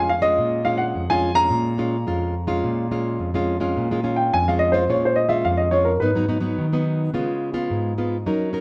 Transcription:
0.00 0.36 F2 medium
0.00 0.12 G#5 medium
0.09 0.25 F5 medium
0.22 0.61 G#3 medium
0.22 0.61 C#4 medium
0.22 0.62 F4 medium
0.22 0.63 D#5 loud
0.38 0.92 A#2 medium
0.65 1.04 G#3 medium
0.65 1.04 C#4 medium
0.65 1.04 F4 medium
0.65 0.81 F5 medium
0.78 1.09 F#5 medium
0.95 1.49 F2 medium
1.10 1.33 G#3 medium
1.10 1.33 C#4 medium
1.10 1.34 F4 medium
1.10 1.39 G#5 medium
1.35 1.74 G#3 medium
1.35 1.74 C#4 medium
1.35 1.74 F4 medium
1.35 3.15 A#5 loud
1.50 2.04 A#2 medium
1.78 1.95 G#3 soft
1.78 1.96 C#4 medium
1.78 1.96 F4 medium
2.07 2.61 F2 medium
2.07 2.34 G#3 soft
2.07 2.34 C#4 soft
2.07 2.34 F4 medium
2.47 2.86 G#3 medium
2.47 2.87 C#4 medium
2.47 2.87 F4 medium
2.64 3.17 A#2 medium
2.91 3.29 G#3 medium
2.91 3.29 C#4 medium
2.91 3.30 F4 medium
3.19 3.73 F2 medium
3.34 3.58 G#3 medium
3.34 3.58 C#4 medium
3.34 3.58 F4 medium
3.60 3.90 G#3 medium
3.60 3.91 C#4 medium
3.60 3.91 F4 medium
3.77 4.30 A#2 medium
3.91 4.01 G#3 medium
3.91 4.01 C#4 medium
3.91 4.01 F4 medium
4.03 4.42 G#3 medium
4.03 4.42 C#4 medium
4.03 4.42 F4 medium
4.16 4.31 G5 medium
4.33 4.87 F2 medium
4.33 4.47 G#5 medium
4.48 4.71 G#3 medium
4.48 4.71 C#4 medium
4.48 4.72 F4 medium
4.48 4.61 F5 medium
4.59 4.74 D#5 medium
4.72 4.84 G#3 medium
4.72 4.84 C#4 medium
4.72 4.84 F4 medium
4.72 4.87 C5 medium
4.89 5.43 A#2 medium
4.89 5.27 G#3 medium
4.89 5.27 C#4 soft
4.89 5.27 F4 medium
4.89 5.03 C#5 medium
5.05 5.18 C5 medium
5.16 5.30 D#5 medium
5.29 5.68 G#3 medium
5.29 5.68 C#4 medium
5.29 5.68 F4 medium
5.29 5.44 E5 medium
5.45 5.99 F2 medium
5.45 5.59 F5 medium
5.57 5.72 D#5 medium
5.71 5.91 G#3 soft
5.71 5.91 C#4 medium
5.71 5.91 F4 medium
5.71 5.86 C#5 medium
5.85 6.00 A#4 medium
6.00 6.55 G#2 medium
6.00 6.10 F#3 medium
6.00 6.10 B3 medium
6.00 6.10 D#4 medium
6.00 7.65 B4 medium
6.15 6.25 F#3 medium
6.15 6.25 B3 medium
6.15 6.26 D#4 medium
6.28 6.39 F#3 medium
6.28 6.39 B3 soft
6.28 6.39 D#4 medium
6.40 6.66 F#3 medium
6.40 6.66 B3 medium
6.40 6.66 D#4 medium
6.58 7.11 D#3 medium
6.73 7.10 F#3 medium
6.73 7.10 B3 medium
6.73 7.10 D#4 medium
7.14 7.67 C#3 medium
7.14 7.52 G#3 soft
7.14 7.51 B3 medium
7.14 7.52 F4 medium
7.53 7.92 G#3 medium
7.53 7.93 B3 medium
7.53 7.93 F4 medium
7.70 8.24 G#2 medium
7.98 8.16 G#3 medium
7.98 8.16 B3 medium
7.98 8.16 F4 medium
8.26 8.61 F#3 medium
8.26 8.50 C#4 medium
8.26 8.50 D#4 medium
8.26 8.50 A#4 medium
8.53 8.61 C#4 soft
8.53 8.61 D#4 medium
8.53 8.61 A#4 medium

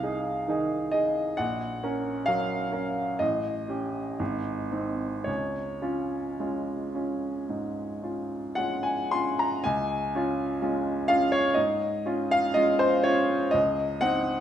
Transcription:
0.00 1.41 C2 medium
0.00 0.44 D#4 medium
0.00 0.44 G#4 medium
0.00 0.92 F5 medium
0.48 0.89 D#3 medium
0.48 0.90 D#4 medium
0.48 0.90 G#4 medium
0.91 1.35 D#4 medium
0.91 1.35 G#4 medium
0.91 1.38 D#5 medium
1.37 1.82 A#1 medium
1.37 2.27 F#5 medium
1.83 2.24 C#4 medium
1.83 2.24 A#4 medium
2.26 2.69 F#3 medium
2.26 2.69 C#4 soft
2.26 2.69 A#4 medium
2.26 3.19 F5 medium
2.72 3.15 C#4 medium
2.72 3.16 A#4 medium
3.19 3.67 A1 medium
3.19 5.27 D#5 medium
3.68 4.15 C#4 soft
3.68 4.16 G4 medium
4.19 4.71 G#1 medium
4.72 5.23 C4 soft
4.72 5.23 D#4 medium
5.24 5.81 C#2 medium
5.24 9.10 C#5 medium
5.82 6.35 C#4 medium
5.82 6.35 F4 medium
6.40 6.92 G#3 soft
6.40 6.92 C#4 soft
6.40 6.92 F4 soft
6.95 7.45 C#4 soft
6.95 7.46 F4 soft
7.49 8.01 G#2 soft
8.03 8.52 C#4 soft
8.03 8.53 F4 soft
8.55 9.08 G#3 medium
8.55 9.08 C#4 soft
8.55 9.08 F4 soft
8.55 8.83 F#5 medium
8.83 9.11 G#5 medium
9.11 9.61 C#4 soft
9.11 9.62 F4 soft
9.11 9.39 C6 medium
9.39 9.65 A#5 medium
9.64 10.13 C#2 medium
9.64 11.08 G#5 medium
10.15 10.58 C#4 medium
10.15 10.59 F4 medium
10.62 11.05 G#3 medium
10.62 11.05 C#4 medium
10.62 11.05 F4 medium
11.08 11.52 C#4 medium
11.08 11.52 F4 medium
11.08 11.32 F5 loud
11.32 11.56 C#5 loud
11.54 12.04 G#2 medium
11.54 12.30 D#5 medium
12.06 12.52 C#4 medium
12.06 12.52 F4 medium
12.31 12.56 F5 loud
12.54 13.01 G#3 medium
12.54 13.01 C#4 medium
12.54 13.01 F4 medium
12.54 12.79 D#5 loud
12.79 13.04 C5 loud
13.03 13.49 C#4 medium
13.03 13.49 F4 medium
13.03 13.52 C#5 medium
13.51 14.00 C#2 medium
13.51 14.00 D#5 medium
14.01 14.40 C4 medium
14.01 14.40 D#4 medium
14.01 14.40 F#5 loud

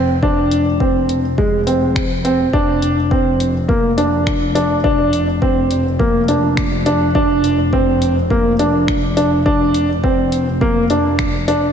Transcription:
0.00 2.50 F1 medium
0.00 0.15 C4 medium
0.23 0.64 D4 loud
0.23 kick loud
0.51 closed hi-hat medium
0.80 1.22 C4 medium
0.80 kick loud
1.09 closed hi-hat medium
1.38 1.59 G#3 medium
1.38 kick loud
1.67 2.08 C4 medium
1.67 closed hi-hat medium
1.96 finger snap medium
1.96 kick loud
2.25 2.45 C4 medium
2.25 closed hi-hat medium
2.53 11.72 F1 loud
2.53 2.95 D4 medium
2.53 kick loud
2.82 closed hi-hat medium
3.11 3.52 C4 medium
3.11 kick loud
3.40 closed hi-hat medium
3.68 3.89 A#3 medium
3.68 kick loud
3.98 4.39 D4 medium
3.98 closed hi-hat medium
4.27 finger snap medium
4.27 kick loud
4.55 4.76 D4 medium
4.55 closed hi-hat medium
4.84 5.25 D4 loud
4.84 kick loud
5.13 closed hi-hat medium
5.42 5.83 C4 medium
5.42 kick loud
5.71 closed hi-hat medium
5.99 6.20 A#3 medium
5.99 kick loud
6.28 6.70 D4 medium
6.28 closed hi-hat medium
6.57 finger snap medium
6.57 kick loud
6.86 7.07 D4 medium
6.86 closed hi-hat medium
7.15 7.56 D4 loud
7.15 kick loud
7.44 closed hi-hat medium
7.73 8.14 C4 medium
7.73 kick loud
8.02 closed hi-hat medium
8.30 8.51 A#3 medium
8.30 kick loud
8.59 9.01 D4 medium
8.59 closed hi-hat medium
8.88 finger snap medium
8.88 kick loud
9.17 9.37 D4 medium
9.17 closed hi-hat medium
9.46 9.87 D4 loud
9.46 kick loud
9.74 closed hi-hat medium
10.04 10.45 C4 medium
10.04 kick loud
10.32 closed hi-hat medium
10.61 10.82 A#3 loud
10.61 kick loud
10.90 11.31 D4 medium
10.90 closed hi-hat medium
11.19 finger snap medium
11.19 kick loud
11.48 11.68 D4 medium
11.48 closed hi-hat medium

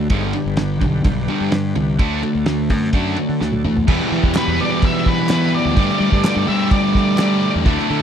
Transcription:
0.10 0.32 G1 medium
0.10 0.33 G2 medium
0.10 0.33 D3 medium
0.10 0.34 G3 loud
0.10 0.27 G#3 medium
0.10 0.27 D#4 medium
0.10 0.26 C5 medium
0.10 kick loud
0.10 ride loud
0.25 1.97 G3 medium
0.25 1.97 D4 medium
0.25 1.98 B4 medium
0.33 0.56 G2 medium
0.33 0.56 D3 medium
0.33 ride medium
0.46 0.81 G1 medium
0.57 0.79 G2 medium
0.57 0.79 D3 medium
0.57 snare loud
0.57 ride medium
0.81 1.03 B1 medium
0.81 1.03 G2 medium
0.81 1.03 D3 medium
0.81 kick medium
0.81 ride medium
1.04 1.27 B1 loud
1.04 1.27 G2 medium
1.04 1.27 D3 medium
1.04 kick loud
1.04 ride medium
1.28 1.51 G2 medium
1.28 1.52 D3 medium
1.28 1.52 G3 loud
1.28 ride medium
1.41 1.73 G2 medium
1.52 1.74 G2 medium
1.52 1.74 D3 medium
1.52 snare loud
1.52 ride medium
1.75 1.98 C2 loud
1.75 1.97 G2 medium
1.75 1.97 D3 medium
1.75 ride medium
1.97 2.21 D2 medium
1.97 2.22 D3 medium
1.97 3.86 F#3 medium
1.97 2.22 A3 medium
1.97 3.86 D4 medium
1.97 2.23 D4 loud
1.97 3.86 A4 medium
1.97 kick loud
1.97 ride medium
2.23 2.45 D3 medium
2.23 2.45 A3 medium
2.23 ride medium
2.35 2.70 D2 medium
2.46 2.68 D3 medium
2.46 2.68 A3 medium
2.46 snare loud
2.46 ride medium
2.70 2.92 F#2 medium
2.70 2.92 D3 medium
2.70 2.92 A3 medium
2.70 kick medium
2.70 ride medium
2.93 3.16 F#2 loud
2.93 3.16 D3 medium
2.93 3.17 A3 medium
2.93 3.17 D4 loud
2.93 kick loud
2.93 ride medium
3.17 3.39 D3 medium
3.17 3.39 A3 medium
3.17 ride medium
3.29 3.40 D3 medium
3.41 3.63 D2 medium
3.41 3.63 D3 medium
3.41 3.63 A3 medium
3.41 snare medium
3.52 high tom medium
3.64 3.87 E2 medium
3.64 3.86 D3 medium
3.64 3.86 A3 medium
3.64 mid tom medium
3.77 floor tom medium
3.87 4.57 E2 medium
3.87 3.99 E2 loud
3.87 4.58 B2 medium
3.87 4.58 E3 medium
3.87 5.76 G3 medium
3.87 4.59 G3 medium
3.87 4.58 B3 loud
3.87 5.76 E4 medium
3.87 5.77 E4 loud
3.87 5.76 B4 medium
3.87 kick loud
3.87 crash loud
3.87 crash medium
3.91 4.58 G4 loud
4.00 snare soft
4.12 4.23 E3 loud
4.23 4.35 E2 medium
4.23 kick medium
4.35 4.61 B4 medium
4.35 snare loud
4.35 clap loud
4.35 crash medium
4.48 4.59 E2 loud
4.58 5.28 E2 medium
4.58 5.29 B2 medium
4.58 5.50 E3 medium
4.58 5.29 E3 medium
4.58 5.29 G3 medium
4.58 5.29 B3 medium
4.58 5.28 G4 medium
4.58 4.84 D5 loud
4.82 5.08 E5 loud
4.82 kick loud
4.82 crash medium
5.06 5.29 B4 loud
5.06 kick loud
5.29 5.75 E2 medium
5.29 5.76 B2 medium
5.29 5.76 E3 medium
5.29 5.75 G3 medium
5.29 5.77 B3 medium
5.29 5.55 B4 loud
5.29 snare loud
5.29 clap loud
5.29 crash medium
5.33 5.77 G4 medium
5.55 6.21 D5 loud
5.65 5.76 D2 medium
5.75 6.46 G2 medium
5.75 5.88 G2 loud
5.75 6.46 D3 medium
5.75 6.46 G3 loud
5.75 7.64 A3 medium
5.75 6.49 A3 loud
5.75 6.48 D4 loud
5.75 7.64 G4 medium
5.75 7.64 D5 medium
5.75 kick loud
5.75 crash medium
5.80 6.46 G4 loud
5.90 snare soft
6.00 6.11 G3 medium
6.12 6.23 G2 medium
6.12 kick medium
6.24 6.48 D5 medium
6.24 snare loud
6.24 clap loud
6.24 crash medium
6.36 6.47 G2 loud
6.47 7.17 G2 medium
6.47 7.18 D3 medium
6.47 7.39 G3 medium
6.47 7.17 G3 medium
6.47 7.19 A3 medium
6.47 7.18 D4 medium
6.47 7.17 G4 medium
6.47 6.70 E5 loud
6.71 7.16 D5 loud
6.71 kick loud
6.71 crash medium
6.95 kick medium
6.95 snare soft
7.18 7.64 G2 medium
7.18 7.64 D3 medium
7.18 7.64 G3 medium
7.18 7.66 A3 medium
7.18 7.65 D4 medium
7.18 7.52 D5 medium
7.18 snare loud
7.18 clap loud
7.18 crash medium
7.22 7.66 G4 loud
7.55 7.65 E2 medium
7.65 7.77 D2 loud
7.65 8.02 D3 medium
7.65 8.02 A3 medium
7.65 8.02 A3 loud
7.65 8.02 D4 loud
7.65 8.02 E4 medium
7.65 8.02 D5 medium
7.65 kick loud
7.65 crash medium
7.69 8.02 E4 loud
7.79 snare soft
7.90 8.00 D3 loud

